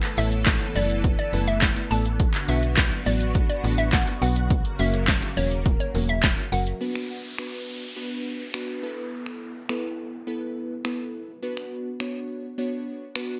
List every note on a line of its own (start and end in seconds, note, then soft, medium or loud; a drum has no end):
0.00 2.17 E3 medium
0.00 2.17 B3 medium
0.00 2.17 A4 medium
0.00 clap medium
0.00 closed hi-hat medium
0.00 shaker medium
0.17 0.60 A1 loud
0.17 0.64 A3 medium
0.17 0.64 B3 medium
0.17 0.64 E4 medium
0.17 0.64 A4 medium
0.17 0.64 C#5 loud
0.17 0.29 E5 medium
0.17 open hi-hat medium
0.17 shaker medium
0.32 closed hi-hat medium
0.32 shaker medium
0.46 kick loud
0.46 snare loud
0.46 clap loud
0.46 closed hi-hat medium
0.46 shaker medium
0.61 closed hi-hat medium
0.61 shaker medium
0.75 1.18 F#1 loud
0.75 1.22 A3 medium
0.75 1.22 B3 medium
0.75 1.22 E4 medium
0.75 1.22 A4 medium
0.75 1.22 B4 medium
0.75 0.98 D5 medium
0.75 open hi-hat medium
0.75 shaker soft
0.90 closed hi-hat medium
0.90 shaker medium
1.04 kick loud
1.04 closed hi-hat medium
1.04 shaker medium
1.19 1.30 D5 medium
1.19 closed hi-hat soft
1.19 shaker soft
1.33 1.76 F#1 loud
1.33 1.79 A3 medium
1.33 1.79 B3 medium
1.33 1.79 E4 medium
1.33 1.80 A4 medium
1.33 1.80 B4 medium
1.33 open hi-hat medium
1.33 shaker medium
1.47 1.59 E5 medium
1.47 closed hi-hat medium
1.47 shaker medium
1.62 kick loud
1.62 snare loud
1.62 clap loud
1.62 closed hi-hat medium
1.62 shaker medium
1.76 closed hi-hat medium
1.76 shaker medium
1.91 2.33 A1 loud
1.91 2.20 A3 medium
1.91 2.20 B3 medium
1.91 2.20 E4 medium
1.91 2.20 A4 medium
1.91 2.20 D5 medium
1.91 2.02 A5 medium
1.91 open hi-hat medium
1.91 shaker soft
2.06 closed hi-hat medium
2.06 shaker medium
2.19 4.48 D3 medium
2.19 4.48 B3 medium
2.19 6.77 F#4 medium
2.19 kick loud
2.19 closed hi-hat medium
2.19 shaker medium
2.34 clap medium
2.34 closed hi-hat medium
2.34 shaker medium
2.48 2.91 B1 loud
2.48 2.95 F#3 medium
2.48 2.95 B3 medium
2.48 2.95 D4 medium
2.48 2.95 F#4 medium
2.48 2.95 B4 medium
2.48 2.60 E5 medium
2.48 open hi-hat medium
2.48 shaker medium
2.63 closed hi-hat medium
2.63 shaker medium
2.77 kick loud
2.77 snare loud
2.77 clap loud
2.77 closed hi-hat medium
2.77 shaker medium
2.92 closed hi-hat medium
2.92 shaker medium
3.06 3.49 A1 medium
3.06 3.52 F#3 medium
3.06 3.52 B3 medium
3.06 3.53 D4 medium
3.06 3.53 F#4 medium
3.06 3.53 B4 medium
3.06 3.29 D5 medium
3.06 open hi-hat medium
3.06 shaker soft
3.21 closed hi-hat medium
3.21 shaker medium
3.35 kick loud
3.35 closed hi-hat medium
3.35 shaker medium
3.50 3.61 D5 medium
3.50 closed hi-hat soft
3.50 shaker soft
3.64 4.06 A1 loud
3.64 4.10 F#3 medium
3.64 4.10 B3 medium
3.64 4.10 D4 medium
3.64 4.10 F#4 medium
3.64 4.10 B4 medium
3.64 open hi-hat medium
3.64 shaker medium
3.78 3.89 E5 medium
3.78 closed hi-hat medium
3.78 shaker medium
3.93 4.04 F#5 medium
3.93 kick loud
3.93 snare loud
3.93 clap loud
3.93 closed hi-hat medium
3.93 shaker medium
4.07 closed hi-hat medium
4.07 shaker medium
4.21 4.64 B1 loud
4.21 4.50 F#3 medium
4.21 4.50 B3 medium
4.21 4.51 D4 medium
4.21 4.51 F#4 medium
4.21 4.51 B4 medium
4.21 4.33 F#5 medium
4.21 open hi-hat medium
4.21 shaker soft
4.36 closed hi-hat medium
4.36 shaker medium
4.50 6.79 C#3 medium
4.50 6.79 A#3 medium
4.50 kick loud
4.50 closed hi-hat medium
4.50 shaker medium
4.65 closed hi-hat medium
4.65 shaker medium
4.79 5.22 F#1 loud
4.79 5.25 F#3 medium
4.79 5.26 A#3 medium
4.79 5.26 C#4 medium
4.79 5.26 F#4 medium
4.79 5.26 A#4 loud
4.79 4.91 E5 medium
4.79 open hi-hat medium
4.79 shaker medium
4.94 closed hi-hat medium
4.94 shaker medium
5.08 kick loud
5.08 snare medium
5.08 clap loud
5.08 closed hi-hat medium
5.08 shaker medium
5.22 closed hi-hat medium
5.22 shaker medium
5.37 5.79 E1 medium
5.37 5.83 F#3 medium
5.37 5.83 A#3 medium
5.37 5.83 C#4 medium
5.37 5.83 F#4 medium
5.37 5.83 A#4 medium
5.37 5.59 C#5 medium
5.37 open hi-hat medium
5.37 shaker soft
5.51 closed hi-hat medium
5.51 shaker medium
5.66 kick loud
5.66 closed hi-hat medium
5.66 shaker medium
5.80 5.91 C#5 medium
5.80 closed hi-hat soft
5.80 shaker soft
5.94 6.37 E1 loud
5.94 6.41 F#3 medium
5.94 6.41 A#3 medium
5.94 6.41 C#4 medium
5.94 6.41 F#4 medium
5.94 6.41 A#4 medium
5.94 open hi-hat medium
5.94 shaker medium
6.09 6.20 E5 medium
6.09 closed hi-hat medium
6.09 shaker medium
6.23 kick loud
6.23 snare medium
6.23 clap loud
6.23 closed hi-hat medium
6.23 shaker medium
6.38 closed hi-hat medium
6.38 shaker medium
6.52 6.74 F#1 loud
6.52 6.81 F#3 medium
6.52 6.81 A#3 medium
6.52 6.81 C#4 medium
6.52 6.80 F#4 medium
6.52 6.81 A#4 medium
6.52 6.63 F#5 medium
6.52 open hi-hat medium
6.52 shaker soft
6.67 closed hi-hat medium
6.67 shaker medium
6.81 7.27 B3 medium
6.81 7.27 D4 medium
6.81 7.27 F#4 medium
6.81 7.28 B4 loud
6.81 downlifter medium
6.96 finger snap medium
7.38 7.85 B3 medium
7.38 7.85 D4 medium
7.38 7.85 F#4 medium
7.38 7.85 B4 loud
7.38 finger snap loud
7.96 8.43 B3 medium
7.96 8.43 D4 medium
7.96 8.43 F#4 medium
7.96 8.43 B4 loud
8.54 8.82 B3 medium
8.54 8.83 D4 medium
8.54 8.83 F#4 medium
8.54 8.82 B4 loud
8.54 finger snap loud
8.83 9.52 B3 medium
8.83 9.53 E4 medium
8.83 9.53 A4 medium
8.83 9.53 B4 medium
9.26 finger snap medium
9.69 10.16 B3 medium
9.69 10.16 E4 medium
9.69 10.16 A4 medium
9.69 10.16 B4 loud
9.69 finger snap loud
10.27 10.73 B3 medium
10.27 10.74 E4 medium
10.27 10.74 A4 medium
10.27 10.74 B4 loud
10.85 11.31 B3 medium
10.85 11.31 E4 medium
10.85 11.31 A4 medium
10.85 11.32 B4 medium
10.85 finger snap loud
11.43 11.89 B3 loud
11.43 11.89 D4 medium
11.43 11.89 F#4 medium
11.43 11.89 B4 loud
11.57 finger snap medium
12.00 12.47 B3 medium
12.00 12.47 D4 medium
12.00 12.47 F#4 medium
12.00 12.47 C#5 loud
12.00 finger snap loud
12.58 13.04 B3 medium
12.58 13.04 D4 medium
12.58 13.05 F#4 medium
12.58 13.05 C#5 loud
13.15 13.40 B3 loud
13.15 13.40 D4 medium
13.15 13.40 F#4 medium
13.15 13.40 B4 loud
13.15 finger snap loud